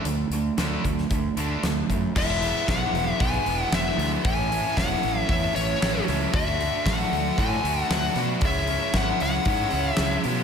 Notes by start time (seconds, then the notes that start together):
0.05 D2 D3 A3, closed hi-hat
0.30 D2 D3 A3, closed hi-hat
0.57 D2 D3 A3 D4, snare, closed hi-hat
0.84 D2 D3 A3, kick, closed hi-hat
0.98 snare
1.10 D2 D3 A3, kick, closed hi-hat
1.37 D2 D3 A3 D4, closed hi-hat
1.63 D2 D3 A3, snare, closed hi-hat
1.89 F#2 D3 A3, kick, closed hi-hat
2.15 E1 E3 G#3 B3 E4 E5, kick, crash
2.41 G#3 B3 E4, open hi-hat
2.67 B1 E3 G#3 B3 E4 F#5, kick, snare, open hi-hat
2.93 E1, open hi-hat
3.20 B1 E3 G#3 B3 E4 G#5, kick, open hi-hat
3.44 E1 G#3 B3 E4, open hi-hat
3.63 F#5
3.71 E1 E3 G#3 B3 E4 E5, snare, open hi-hat
3.97 D2 G#3 B3 E4, open hi-hat
4.22 A1 A2 E3 A3 C#4 E4 G#5, kick, open hi-hat
4.49 A3 C#4 E4, open hi-hat
4.76 E1 E3 A3 C#4 E4 F#5, kick, snare, open hi-hat
5.03 A1, open hi-hat
5.20 E5
5.28 E2 A2 E3 A3 C#4 E4 E5, kick, open hi-hat
5.54 A1 A3 C#4 E4 C#5, open hi-hat
5.79 A1 E3 A3 C#4 E4, snare, open hi-hat
6.06 C#2 A3 C#4 E4, snare, open hi-hat
6.32 D2 D3 A3 D4 F#4 E5, kick, open hi-hat
6.57 A3 D4 F#4, open hi-hat
6.85 A1 D3 A3 D4 F#4 F#5, kick, snare, open hi-hat
7.12 D2, open hi-hat
7.37 A2 D3 A3 D4 F#4 G#5, kick, open hi-hat
7.63 D2 D4 F#4, open hi-hat
7.67 A3
7.82 F#5
7.89 D2 D3 A3 D4 F#4 F#5, snare, open hi-hat
8.15 B2 A3 D4 F#4, snare, open hi-hat
8.41 C#2 C#3 G#3 C#4 E4, kick, open hi-hat
8.45 E5
8.67 G#3 C#4 E4, open hi-hat
8.93 G#1 C#3 G#3 C#4 E4 F#5, kick, snare, open hi-hat
9.20 C#2 F#5, open hi-hat
9.45 G#2 C#3 G#3 C#4 E4, kick, open hi-hat
9.71 C#2 C#4 E4, open hi-hat
9.75 G#3
9.92 E5
9.97 C#2 C#3 G#3 C#4, snare, open hi-hat
10.01 E4
10.24 B2 G#3 C#4 E4, open hi-hat